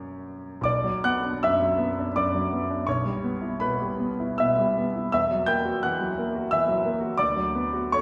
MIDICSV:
0, 0, Header, 1, 2, 480
1, 0, Start_track
1, 0, Key_signature, 2, "minor"
1, 0, Tempo, 797872
1, 380, Time_signature, 3, 2, 24, 8
1, 846, Tempo, 724638
1, 2286, Tempo, 762389
1, 3246, Tempo, 689655
1, 4686, Tempo, 745342
1, 5228, End_track
2, 0, Start_track
2, 0, Title_t, "Grand piano"
2, 0, Program_c, 0, 0
2, 0, Control_c, 0, 64, 127
2, 0, Note_on_c, 0, 42, 54
2, 0, Note_on_c, 0, 54, 40
2, 0, Note_on_c, 0, 58, 38
2, 0, Note_on_c, 0, 61, 43
2, 0, Note_on_c, 0, 73, 60
2, 0, Note_on_c, 0, 74, 83
2, 341, Note_off_c, 0, 42, 0
2, 346, Note_off_c, 0, 54, 0
2, 350, Note_off_c, 0, 58, 0
2, 354, Note_off_c, 0, 61, 0
2, 369, Note_on_c, 0, 35, 59
2, 382, Note_on_c, 0, 86, 77
2, 392, Note_off_c, 0, 74, 0
2, 392, Control_c, 0, 64, 0
2, 392, Note_on_c, 0, 74, 56
2, 393, Note_off_c, 0, 73, 0
2, 504, Note_on_c, 0, 54, 46
2, 509, Control_c, 0, 64, 127
2, 605, Note_off_c, 0, 74, 0
2, 617, Note_off_c, 0, 86, 0
2, 626, Note_on_c, 0, 90, 84
2, 627, Note_on_c, 0, 59, 42
2, 630, Note_on_c, 0, 78, 65
2, 689, Note_off_c, 0, 54, 0
2, 748, Note_on_c, 0, 62, 41
2, 806, Note_off_c, 0, 59, 0
2, 838, Note_off_c, 0, 78, 0
2, 852, Note_off_c, 0, 90, 0
2, 861, Note_on_c, 0, 88, 75
2, 863, Note_on_c, 0, 42, 43
2, 868, Note_on_c, 0, 76, 67
2, 929, Note_off_c, 0, 62, 0
2, 983, Note_on_c, 0, 54, 37
2, 1051, Note_off_c, 0, 42, 0
2, 1094, Note_on_c, 0, 59, 47
2, 1170, Note_off_c, 0, 54, 0
2, 1232, Note_on_c, 0, 62, 46
2, 1285, Note_off_c, 0, 59, 0
2, 1316, Note_off_c, 0, 76, 0
2, 1339, Note_off_c, 0, 88, 0
2, 1344, Note_on_c, 0, 86, 78
2, 1346, Note_on_c, 0, 42, 42
2, 1350, Note_on_c, 0, 74, 54
2, 1413, Note_off_c, 0, 62, 0
2, 1469, Note_on_c, 0, 54, 46
2, 1530, Note_off_c, 0, 42, 0
2, 1587, Note_on_c, 0, 59, 43
2, 1651, Note_off_c, 0, 54, 0
2, 1705, Note_on_c, 0, 62, 46
2, 1769, Note_off_c, 0, 59, 0
2, 1776, Note_off_c, 0, 35, 0
2, 1791, Note_off_c, 0, 74, 0
2, 1813, Note_on_c, 0, 85, 72
2, 1815, Note_off_c, 0, 86, 0
2, 1816, Note_off_c, 0, 62, 0
2, 1820, Control_c, 0, 64, 0
2, 1822, Note_on_c, 0, 35, 57
2, 1827, Note_on_c, 0, 73, 62
2, 1924, Control_c, 0, 64, 127
2, 1934, Note_on_c, 0, 55, 37
2, 2061, Note_on_c, 0, 59, 45
2, 2120, Note_off_c, 0, 55, 0
2, 2177, Note_on_c, 0, 64, 36
2, 2246, Note_off_c, 0, 59, 0
2, 2269, Note_off_c, 0, 73, 0
2, 2289, Note_off_c, 0, 85, 0
2, 2298, Note_on_c, 0, 83, 72
2, 2305, Note_on_c, 0, 71, 55
2, 2306, Note_on_c, 0, 47, 44
2, 2363, Note_off_c, 0, 64, 0
2, 2424, Note_on_c, 0, 55, 41
2, 2490, Note_off_c, 0, 47, 0
2, 2547, Note_on_c, 0, 59, 46
2, 2617, Note_off_c, 0, 55, 0
2, 2675, Note_on_c, 0, 64, 42
2, 2740, Note_off_c, 0, 59, 0
2, 2766, Note_off_c, 0, 71, 0
2, 2787, Note_off_c, 0, 83, 0
2, 2789, Note_on_c, 0, 88, 68
2, 2797, Note_on_c, 0, 47, 40
2, 2802, Note_on_c, 0, 76, 58
2, 2863, Note_off_c, 0, 64, 0
2, 2921, Note_on_c, 0, 55, 47
2, 2979, Note_off_c, 0, 47, 0
2, 3039, Note_on_c, 0, 59, 44
2, 3097, Note_off_c, 0, 55, 0
2, 3148, Note_on_c, 0, 64, 44
2, 3211, Note_off_c, 0, 59, 0
2, 3228, Note_off_c, 0, 35, 0
2, 3231, Note_off_c, 0, 76, 0
2, 3249, Note_off_c, 0, 88, 0
2, 3255, Note_off_c, 0, 64, 0
2, 3258, Control_c, 0, 64, 0
2, 3259, Note_on_c, 0, 88, 79
2, 3262, Note_on_c, 0, 40, 53
2, 3270, Note_on_c, 0, 76, 58
2, 3369, Control_c, 0, 64, 127
2, 3387, Note_on_c, 0, 54, 43
2, 3487, Note_off_c, 0, 76, 0
2, 3496, Note_on_c, 0, 91, 86
2, 3499, Note_off_c, 0, 88, 0
2, 3503, Note_on_c, 0, 58, 49
2, 3506, Note_on_c, 0, 79, 61
2, 3573, Note_off_c, 0, 54, 0
2, 3625, Note_on_c, 0, 66, 39
2, 3690, Note_off_c, 0, 58, 0
2, 3723, Note_off_c, 0, 79, 0
2, 3735, Note_off_c, 0, 91, 0
2, 3749, Note_on_c, 0, 90, 69
2, 3756, Note_on_c, 0, 52, 46
2, 3756, Note_on_c, 0, 78, 55
2, 3811, Note_off_c, 0, 66, 0
2, 3874, Note_on_c, 0, 54, 42
2, 3935, Note_off_c, 0, 52, 0
2, 3995, Note_on_c, 0, 58, 47
2, 4053, Note_off_c, 0, 54, 0
2, 4115, Note_on_c, 0, 66, 46
2, 4171, Note_off_c, 0, 58, 0
2, 4190, Note_off_c, 0, 78, 0
2, 4214, Note_off_c, 0, 90, 0
2, 4224, Note_on_c, 0, 88, 82
2, 4234, Note_on_c, 0, 52, 46
2, 4235, Note_on_c, 0, 76, 58
2, 4289, Note_off_c, 0, 66, 0
2, 4343, Note_on_c, 0, 54, 49
2, 4408, Note_off_c, 0, 52, 0
2, 4457, Note_on_c, 0, 58, 43
2, 4524, Note_off_c, 0, 54, 0
2, 4568, Note_on_c, 0, 66, 45
2, 4644, Note_off_c, 0, 58, 0
2, 4667, Note_off_c, 0, 40, 0
2, 4673, Note_off_c, 0, 76, 0
2, 4687, Note_on_c, 0, 86, 90
2, 4689, Note_off_c, 0, 66, 0
2, 4695, Note_off_c, 0, 88, 0
2, 4695, Note_on_c, 0, 74, 60
2, 4696, Note_on_c, 0, 38, 55
2, 4698, Control_c, 0, 64, 0
2, 4801, Control_c, 0, 64, 127
2, 4808, Note_on_c, 0, 54, 46
2, 4929, Note_on_c, 0, 59, 48
2, 4997, Note_off_c, 0, 54, 0
2, 5047, Note_on_c, 0, 66, 45
2, 5119, Note_off_c, 0, 59, 0
2, 5143, Note_off_c, 0, 74, 0
2, 5165, Note_off_c, 0, 86, 0
2, 5169, Note_on_c, 0, 85, 88
2, 5173, Note_on_c, 0, 50, 50
2, 5179, Note_on_c, 0, 73, 60
2, 5228, Note_off_c, 0, 38, 0
2, 5228, Note_off_c, 0, 50, 0
2, 5228, Note_off_c, 0, 66, 0
2, 5228, Note_off_c, 0, 73, 0
2, 5228, Note_off_c, 0, 85, 0
2, 5228, End_track
0, 0, End_of_file